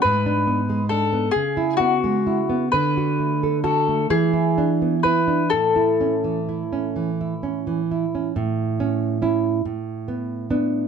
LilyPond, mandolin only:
\new Staff \with { instrumentName = "Mandolin" } { \time 6/8 \key a \major \tempo 4. = 44 b'4 a'8 gis'8 fis'4 | b'4 a'8 gis'4 b'8 | a'2~ a'8 r8 | r2. | }